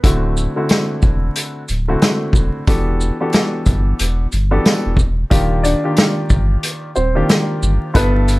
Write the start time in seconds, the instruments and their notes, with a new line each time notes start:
0.03 sub bass D1, grand piano D3 A3 C4 E4 F#4, kick, closed hi-hat
0.37 shaker
0.56 grand piano D3 A3 C4 E4 F#4
0.69 snare, closed hi-hat, tambourine
1.02 sub bass E1, kick, shaker
1.36 closed hi-hat
1.68 sub bass D1, closed hi-hat, shaker
1.88 grand piano D3 A3 C4 E4 F#4
2.02 snare, closed hi-hat, tambourine
2.33 sub bass E1, kick, shaker
2.67 sub bass E1, grand piano E3 B3 D4 F#4 G4 A4, kick, closed hi-hat
3.01 shaker
3.20 grand piano E3 B3 D4 F#4 G4 A4
3.33 snare, closed hi-hat, tambourine
3.66 sub bass G1, kick, closed hi-hat, shaker
3.99 sub bass E1, closed hi-hat
4.32 sub bass G1, closed hi-hat, shaker
4.51 grand piano E3 B3 D4 F#4 G4 A4
4.66 snare, closed hi-hat, tambourine
4.86 sub bass E1
4.97 sub bass E1, kick, shaker
5.30 sub bass D#1, grand piano D#3 A#3 D4 F4 G4, kick, closed hi-hat
5.63 upright piano D4 D5, closed hi-hat, shaker
5.84 grand piano D#3 A#3 D4 F4 G4
5.97 snare, closed hi-hat, tambourine
6.30 sub bass G1, kick, shaker
6.63 closed hi-hat
6.96 sub bass D#1, upright piano C4 C5, shaker
7.15 grand piano D#3 A#3 D4 F4 G4
7.29 snare, closed hi-hat, tambourine
7.62 sub bass G1, shaker
7.94 sub bass G1, grand piano G2 G3 B3 E4 A4, upright piano B3 B4, kick, closed hi-hat
8.28 closed hi-hat, shaker